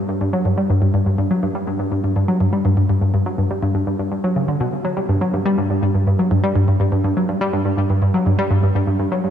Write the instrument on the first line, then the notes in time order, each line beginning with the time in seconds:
synth arpeggio sound
0.09 G2
0.21 G2
0.33 F#3
0.45 G2
0.58 G3
0.70 G2
0.82 G2
0.94 G2
1.06 G2
1.18 G2
1.31 F#3
1.43 G2
1.55 G3
1.67 G2
1.79 G2
1.92 G2
2.04 G2
2.16 G2
2.28 F#3
2.41 G2
2.53 G3
2.65 G2
2.77 G2
2.90 G2
3.02 G2
3.14 G2
3.26 F#3
3.38 G2
3.51 G3
3.63 G2
3.75 G2
3.87 G2
3.99 G2
4.12 G2
4.24 F#3
4.36 C#3
4.48 D3
4.60 B2
4.85 F#3
4.97 G3
5.09 G2
5.21 F#3
5.33 G2
5.46 G3
5.58 G2
5.70 G2
5.82 G2
5.94 G2
6.07 G2
6.19 F#3
6.31 G2
6.44 G3
6.56 G2
6.68 G2
6.80 G2
6.92 G2
7.04 G2
7.17 F#3
7.29 G2
7.41 G3
7.53 G2
7.65 G2
7.77 G2
7.90 G2
8.02 G2
8.14 F#3
8.26 G2
8.39 G3
8.51 G2
8.63 G2
8.75 G2
8.87 G2
8.99 G2
9.12 F#3
9.24 G2